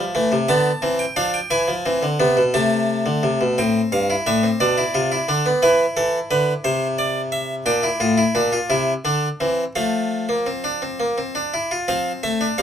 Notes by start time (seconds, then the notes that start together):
Already playing: F3 E5
0.15 E3 A3
0.32 C3
0.49 D3 B3 A5
0.82 E3 C4
0.99 G5
1.16 F3 D4 F5
1.34 G5
1.51 E3 E4 G#5
1.68 F3
1.86 E3 C4
2.03 D3
2.20 C3 B3
2.37 B2
2.54 C3 A3 A5
3.06 D3
3.23 C3
3.41 B2
3.58 A2 C4 G5
3.92 G2 F5
4.10 E4
4.27 A2 D4 E5
4.43 C4
4.60 B2 D4 D5
4.78 E4
4.94 C3 F4
5.12 E4
5.28 D3 D4
5.46 B3
5.62 E3 E4 B4
5.97 E3 A4
6.31 D3 B4
6.64 C3 C5
6.99 D5
7.32 E5
7.66 A#2 D4 G5
7.83 E4
8.00 A2 F4
8.18 E4
8.35 A#2 D4
8.53 F4
8.70 C3 E4
9.05 D3 D4
9.40 E3 C4
9.76 F3 A3 F5
10.29 A#3
10.47 C4
10.64 D4
10.82 C4
11.00 A#3
11.18 C4
11.35 D4
11.54 E4
11.71 F4
11.88 F3 C4 F5
12.23 A3 E5
12.41 D4
12.58 G3 C4 F5